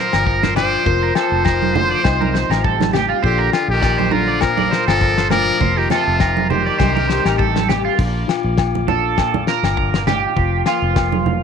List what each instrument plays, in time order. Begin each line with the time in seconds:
Already playing: nylon-string guitar A#2 F3 D4 F4 A#4, tenor saxophone F3, muted trumpet A#4, clean electric guitar C5
0.13 fingered electric bass G1, clean electric guitar A#4, snare, low agogo
0.26 nylon-string guitar F3, clean electric guitar A#4, kick
0.43 clean electric guitar C5, snare, high conga
0.55 tenor saxophone F3, nylon-string guitar D4, muted trumpet C5, clean electric guitar D5, snare, low conga, low agogo
0.85 fingered electric bass F1, nylon-string guitar F3 A#3 F4 A#4, clean electric guitar C5, kick
1.03 clean electric guitar A#4
1.15 tenor saxophone F3, clean electric guitar A4, muted trumpet C5, snare, low agogo
1.32 fingered electric bass F1
1.44 nylon-string guitar D#3, clean electric guitar A#4, kick, snare, low agogo
1.62 high conga
1.73 nylon-string guitar D3, clean electric guitar C5, high conga, low conga
1.91 clean electric guitar D5
2.03 fingered electric bass C2, nylon-string guitar C3 D#4, clean electric guitar C5, kick, snare, low agogo
2.21 clean electric guitar A#4, high conga
2.34 clean electric guitar C5, snare
2.50 fingered electric bass A1, clean electric guitar A#4, snare, low agogo
2.64 nylon-string guitar G3, clean electric guitar A4, kick
2.81 snare, high conga
2.93 nylon-string guitar G4, clean electric guitar G4, snare, low conga, low agogo
3.09 clean electric guitar F4
3.23 fingered electric bass A#1, tenor saxophone D3, nylon-string guitar F4, muted trumpet G4, clean electric guitar C5, muted nylon-string guitar stroke, kick
3.38 clean electric guitar A#4
3.53 tenor saxophone D3, muted trumpet F4, snare, low agogo
3.68 fingered electric bass A#1, muted trumpet G4
3.73 tenor saxophone D#3
3.81 nylon-string guitar F3, clean electric guitar D5, kick, snare, low agogo
3.98 clean electric guitar C5, high conga
4.11 tenor saxophone D3, nylon-string guitar D4, muted trumpet F4, clean electric guitar A#4, high conga
4.28 clean electric guitar D5
4.40 nylon-string guitar A#2 F4, tenor saxophone F3, muted trumpet A#4, muted clean electric guitar stroke, kick, snare, low agogo
4.57 clean electric guitar D5, high conga
4.71 clean electric guitar C5, snare
4.87 fingered electric bass G1, tenor saxophone F3, muted trumpet A4, clean electric guitar A#4, snare, low agogo
5.01 nylon-string guitar F3, clean electric guitar A#4, kick
5.18 clean electric guitar C5, snare
5.30 tenor saxophone F3, nylon-string guitar D4, muted trumpet A#4, clean electric guitar D5, snare, low conga, low agogo
5.60 fingered electric bass F1, nylon-string guitar F3 A#3 F4, clean electric guitar C5, kick, low conga
5.77 tenor saxophone D#3, muted trumpet G4, clean electric guitar A#4
5.90 tenor saxophone C3, muted trumpet F4, clean electric guitar A4, snare, low conga, low agogo
6.07 fingered electric bass F1
6.18 nylon-string guitar D#3, clean electric guitar A#4, kick, snare, low agogo
6.37 high conga
6.49 tenor saxophone D#3, muted trumpet G4, clean electric guitar C5, muted nylon-string guitar stroke, high conga, low conga
6.66 clean electric guitar D5
6.78 fingered electric bass C2, nylon-string guitar C3 G3 D4 D#4, clean electric guitar C5, kick, snare, high conga, low agogo
6.95 clean electric guitar A#4, high conga
7.09 clean electric guitar C5, snare
7.25 fingered electric bass A1, clean electric guitar A#4, snare, low agogo
7.38 nylon-string guitar G3, clean electric guitar A4, kick
7.56 snare, high conga
7.68 clean electric guitar G4, nylon-string guitar G4, snare, low conga, low agogo
7.85 clean electric guitar F4
7.98 fingered electric bass A#1, nylon-string guitar A#2 D4, tonewheel organ F5 D6, kick, crash
8.28 nylon-string guitar F4, snare, low agogo
8.44 fingered electric bass A#1
8.58 nylon-string guitar F3, kick, snare, low agogo
8.75 high conga
8.88 nylon-string guitar D4, clean electric guitar A4, high conga, low conga
9.18 nylon-string guitar A#2, kick, snare, low agogo
9.34 high conga
9.47 nylon-string guitar F4, clean electric guitar A#4, snare
9.63 fingered electric bass G1, snare, low agogo
9.77 nylon-string guitar D3, kick
9.94 snare
10.06 nylon-string guitar D#3, clean electric guitar G4, snare, low conga, low agogo
10.36 fingered electric bass F1, nylon-string guitar F3 F4, tonewheel organ C6, kick
10.66 nylon-string guitar A#3, clean electric guitar F4, snare, low agogo
10.82 fingered electric bass F1
10.94 nylon-string guitar A#3, kick, snare, low agogo
11.12 high conga
11.26 nylon-string guitar A#3, high conga, low conga